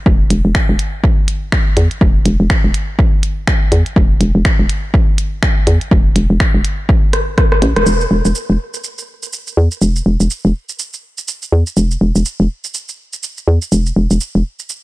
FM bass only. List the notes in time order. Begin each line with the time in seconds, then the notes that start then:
0.06 E1
0.31 E1
0.45 E1
0.69 E1
1.77 E2
2.01 E1
2.26 E1
2.40 E1
2.64 E1
3.72 E2
3.96 E1
4.21 E1
4.35 E1
4.59 E1
5.67 E2
5.91 E1
6.16 E1
6.30 E1
6.54 E1
7.62 A1
7.76 E1
7.86 E1
8.11 E1
8.25 E1
8.50 E1
9.57 E2
9.82 E1
10.06 E1
10.20 E1
10.45 E1
11.52 E2
11.77 E1
12.01 E1
12.16 E1
12.40 E1
13.48 E2
13.72 E1
13.96 E1
14.11 E1
14.35 E1